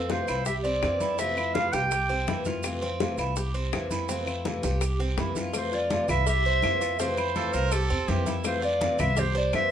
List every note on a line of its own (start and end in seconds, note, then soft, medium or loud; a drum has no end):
0.00 0.23 F2 medium
0.00 0.27 C4 medium
0.00 0.12 A4 medium
0.10 0.27 C3 medium
0.10 0.27 E3 medium
0.10 0.28 A3 medium
0.10 0.28 C4 medium
0.10 0.27 F4 medium
0.10 0.46 C5 medium
0.10 high bongo medium
0.10 high conga medium
0.10 short guiro medium
0.10 maracas soft
0.28 0.79 C2 medium
0.28 0.47 A3 soft
0.28 0.46 C4 soft
0.28 0.46 E4 medium
0.28 0.46 F4 soft
0.28 high conga soft
0.28 short guiro medium
0.28 claves medium
0.28 maracas medium
0.45 0.64 G4 medium
0.45 0.55 E5 medium
0.45 muted nylon-string guitar stroke medium
0.45 high bongo medium
0.45 high conga soft
0.45 long guiro medium
0.45 maracas medium
0.64 1.00 C4 medium
0.64 1.15 D5 loud
0.64 high conga soft
0.64 maracas soft
0.82 1.68 F2 medium
0.82 1.00 C3 medium
0.82 1.00 E3 medium
0.82 1.01 A#3 medium
0.82 1.01 C4 medium
0.82 0.99 E4 medium
0.82 high bongo medium
0.82 low bongo medium
0.82 high conga soft
0.82 short guiro medium
0.82 claves medium
0.82 maracas soft
1.00 1.19 A#3 soft
1.00 1.19 C4 soft
1.00 1.18 E4 soft
1.00 1.18 E4 medium
1.00 high conga medium
1.00 short guiro medium
1.00 maracas medium
1.19 1.36 C3 medium
1.19 1.37 E3 medium
1.19 1.37 A3 medium
1.19 1.37 C4 medium
1.19 1.36 F4 medium
1.19 1.53 E5 loud
1.19 high bongo medium
1.19 high conga soft
1.19 long guiro medium
1.19 maracas medium
1.37 1.54 A3 soft
1.37 1.55 C4 soft
1.37 1.72 E4 medium
1.37 1.55 F4 soft
1.37 high conga soft
1.37 claves medium
1.37 maracas soft
1.54 1.72 C3 medium
1.54 1.73 E3 medium
1.54 1.73 A3 medium
1.54 1.73 C4 medium
1.54 1.72 F4 medium
1.54 1.74 F5 loud
1.54 high bongo medium
1.54 high conga medium
1.54 short guiro medium
1.54 maracas soft
1.73 2.24 C2 medium
1.73 1.91 A3 soft
1.73 1.91 C4 soft
1.73 1.91 F4 soft
1.73 2.09 G4 medium
1.73 2.46 G5 loud
1.73 high bongo soft
1.73 high conga medium
1.73 short guiro medium
1.73 maracas medium
1.91 muted nylon-string guitar stroke medium
1.91 high bongo medium
1.91 high conga soft
1.91 long guiro medium
1.91 claves medium
1.91 maracas medium
2.09 2.27 C4 medium
2.09 high bongo soft
2.09 high conga soft
2.09 maracas soft
2.27 3.13 F2 medium
2.27 2.45 C3 medium
2.27 2.45 E3 medium
2.27 2.46 A#3 medium
2.27 2.46 C4 medium
2.27 2.45 E4 medium
2.27 high bongo medium
2.27 low bongo medium
2.27 high conga medium
2.27 short guiro medium
2.27 maracas soft
2.45 2.64 A#3 soft
2.45 2.64 C4 soft
2.45 2.63 E4 medium
2.45 2.81 F4 medium
2.45 high bongo soft
2.45 high conga medium
2.45 short guiro medium
2.45 maracas medium
2.63 2.82 C3 medium
2.63 2.82 E3 medium
2.63 2.82 A3 medium
2.63 2.82 C4 medium
2.63 2.81 F4 medium
2.63 high bongo medium
2.63 high conga soft
2.63 long guiro medium
2.63 claves medium
2.63 maracas medium
2.82 3.00 A3 soft
2.82 3.18 C4 medium
2.82 3.01 C4 soft
2.82 3.00 F4 soft
2.82 high conga soft
2.82 maracas soft
3.00 3.18 C3 medium
3.00 3.18 E3 medium
3.00 3.18 A3 medium
3.00 3.18 C4 medium
3.00 3.17 F4 medium
3.00 high bongo medium
3.00 high conga medium
3.00 short guiro medium
3.00 maracas soft
3.18 3.69 C2 medium
3.18 3.37 A3 soft
3.18 3.36 C4 soft
3.18 3.36 E4 medium
3.18 3.36 F4 medium
3.18 high conga soft
3.18 short guiro medium
3.18 claves medium
3.18 maracas medium
3.36 3.55 G4 medium
3.36 muted nylon-string guitar stroke medium
3.36 high bongo medium
3.36 high conga soft
3.36 long guiro medium
3.36 maracas medium
3.54 3.90 C4 medium
3.54 high conga soft
3.54 maracas soft
3.73 4.58 F2 medium
3.73 3.90 C3 medium
3.73 3.91 E3 medium
3.73 3.91 A#3 medium
3.73 3.90 C4 medium
3.73 3.89 E4 medium
3.73 high bongo medium
3.73 low bongo medium
3.73 high conga soft
3.73 short guiro medium
3.73 claves medium
3.73 maracas soft
3.90 4.09 A#3 soft
3.90 4.09 C4 soft
3.90 4.08 E4 soft
3.90 4.09 E4 medium
3.90 high conga medium
3.90 short guiro medium
3.90 maracas medium
4.08 4.26 C3 medium
4.08 4.27 E3 medium
4.08 4.27 A3 medium
4.08 4.27 C4 medium
4.08 4.26 C4 medium
4.08 4.25 F4 medium
4.08 high bongo medium
4.08 high conga soft
4.08 long guiro medium
4.08 maracas medium
4.26 4.45 A3 soft
4.26 4.45 C4 soft
4.26 4.62 E4 medium
4.26 4.44 F4 medium
4.26 high conga soft
4.26 claves medium
4.26 maracas soft
4.45 4.63 C3 medium
4.45 4.63 E3 medium
4.45 4.63 A3 medium
4.45 4.63 C4 medium
4.45 4.61 F4 medium
4.45 high bongo medium
4.45 high conga loud
4.45 short guiro medium
4.45 maracas soft
4.63 5.14 C2 medium
4.63 4.81 A3 soft
4.63 4.80 C4 soft
4.63 4.81 F4 soft
4.63 4.99 G4 medium
4.63 high bongo soft
4.63 high conga medium
4.63 short guiro medium
4.63 maracas medium
4.81 muted nylon-string guitar stroke medium
4.81 high bongo medium
4.81 high conga soft
4.81 long guiro medium
4.81 claves medium
4.81 maracas medium
4.99 5.18 C4 medium
4.99 high bongo soft
4.99 high conga soft
4.99 maracas soft
5.17 6.03 F2 medium
5.17 5.35 C3 medium
5.17 5.35 E3 medium
5.17 5.36 A#3 medium
5.17 5.35 C4 medium
5.17 5.36 E4 medium
5.17 5.33 E4 medium
5.17 high bongo medium
5.17 low bongo medium
5.17 high conga medium
5.17 short guiro medium
5.17 maracas soft
5.35 5.54 A#3 soft
5.35 5.54 C4 soft
5.35 5.53 E4 medium
5.35 5.54 F4 medium
5.35 high bongo soft
5.35 high conga medium
5.35 short guiro medium
5.35 maracas medium
5.53 5.71 C3 medium
5.53 5.71 E3 medium
5.53 5.72 A3 medium
5.53 5.72 C4 medium
5.53 5.70 F4 medium
5.53 5.75 C5 medium
5.53 cowbell loud
5.53 high conga soft
5.53 long guiro medium
5.53 claves medium
5.53 maracas loud
5.72 5.91 A3 soft
5.72 5.90 C4 soft
5.72 5.90 F4 soft
5.72 6.08 F4 medium
5.72 6.10 D5 loud
5.72 high conga soft
5.72 maracas soft
5.90 6.08 C3 medium
5.90 6.08 E3 medium
5.90 6.09 A3 medium
5.90 6.08 C4 medium
5.90 6.07 F4 medium
5.90 cowbell medium
5.90 high conga loud
5.90 short guiro medium
5.90 maracas soft
6.08 6.60 C2 medium
6.08 6.27 A3 soft
6.08 6.27 C4 soft
6.08 6.27 E4 medium
6.08 6.26 F4 medium
6.08 6.27 E5 loud
6.08 high conga soft
6.08 low conga medium
6.08 short guiro medium
6.08 claves medium
6.08 maracas medium
6.27 6.45 G4 medium
6.27 6.96 E5 loud
6.27 muted nylon-string guitar stroke medium
6.27 cowbell loud
6.27 high conga soft
6.27 long guiro medium
6.27 maracas loud
6.45 6.81 C5 medium
6.45 high conga soft
6.45 maracas soft
6.62 7.48 F2 medium
6.62 6.80 C3 medium
6.62 6.81 E3 medium
6.62 6.81 A#3 medium
6.62 6.81 C4 medium
6.62 6.79 E4 medium
6.62 cowbell medium
6.62 high conga medium
6.62 short guiro medium
6.62 claves medium
6.62 maracas soft
6.81 7.00 A#3 soft
6.81 6.99 C4 soft
6.81 6.98 E4 soft
6.81 6.99 F4 medium
6.81 high conga soft
6.81 short guiro medium
6.81 maracas medium
6.99 7.17 C3 medium
6.99 7.17 E3 medium
6.99 7.17 A3 medium
6.99 7.17 C4 medium
6.99 7.16 F4 medium
6.99 8.04 C5 medium
6.99 cowbell loud
6.99 high conga soft
6.99 long guiro medium
6.99 maracas medium
7.17 7.35 A3 soft
7.17 7.35 C4 soft
7.17 7.53 E4 medium
7.17 7.35 F4 soft
7.17 high conga soft
7.17 claves medium
7.17 maracas soft
7.35 7.53 C3 medium
7.35 7.53 E3 medium
7.35 7.53 A3 medium
7.35 7.54 C4 medium
7.35 7.53 F4 medium
7.35 7.55 A4 medium
7.35 cowbell medium
7.35 high conga medium
7.35 short guiro medium
7.35 maracas soft
7.53 7.88 C2 medium
7.53 7.72 A3 soft
7.53 7.72 C4 soft
7.53 7.71 F4 medium
7.53 7.73 A#4 loud
7.53 7.71 C5 medium
7.53 short guiro medium
7.53 maracas medium
7.72 7.89 G4 medium
7.72 8.10 A4 loud
7.72 muted nylon-string guitar stroke medium
7.72 cowbell loud
7.72 high conga soft
7.72 long guiro medium
7.72 claves medium
7.72 maracas loud
7.90 8.07 E2 medium
7.90 8.25 C4 loud
7.90 high conga soft
7.90 maracas soft
8.08 8.93 F2 loud
8.08 8.25 C3 medium
8.08 8.26 E3 medium
8.08 8.26 A#3 medium
8.08 8.26 C4 medium
8.08 8.25 E4 medium
8.08 8.35 G4 medium
8.08 cowbell medium
8.08 high conga medium
8.08 short guiro medium
8.08 maracas soft
8.26 8.45 A#3 soft
8.26 8.44 C4 soft
8.26 8.44 E4 medium
8.26 8.62 E4 medium
8.26 cowbell medium
8.26 high conga medium
8.26 short guiro medium
8.26 maracas medium
8.44 8.61 C3 medium
8.44 8.62 E3 medium
8.44 8.62 A3 medium
8.44 8.62 C4 medium
8.44 8.61 F4 medium
8.44 8.62 C5 medium
8.44 cowbell loud
8.44 long guiro medium
8.44 claves medium
8.44 maracas medium
8.62 8.81 A3 soft
8.62 8.80 C4 medium
8.62 8.80 F4 medium
8.62 8.97 F4 medium
8.62 9.02 D5 loud
8.62 high conga soft
8.62 maracas soft
8.81 8.98 C3 medium
8.81 8.99 E3 medium
8.81 8.99 A3 medium
8.81 8.99 C4 medium
8.81 8.98 F4 medium
8.81 cowbell medium
8.81 high conga loud
8.81 short guiro medium
8.81 maracas soft
8.99 9.49 C2 loud
8.99 9.17 A3 soft
8.99 9.16 C4 soft
8.99 9.16 E4 medium
8.99 9.16 F4 medium
8.99 9.20 E5 loud
8.99 high conga soft
8.99 low conga medium
8.99 short guiro medium
8.99 claves medium
8.99 maracas medium
9.17 9.34 G4 medium
9.17 9.36 C5 medium
9.17 muted nylon-string guitar stroke medium
9.17 cowbell loud
9.17 high conga soft
9.17 low conga medium
9.17 long guiro medium
9.17 maracas medium
9.35 9.70 C5 medium
9.35 9.53 D5 loud
9.35 high conga soft
9.35 maracas soft
9.52 9.71 F2 loud
9.52 9.70 C3 medium
9.52 9.70 E3 medium
9.52 9.71 A#3 medium
9.52 9.70 C4 medium
9.52 9.69 E4 medium
9.52 9.71 E5 loud
9.52 cowbell medium
9.52 high conga medium
9.52 short guiro medium
9.52 claves medium
9.52 maracas soft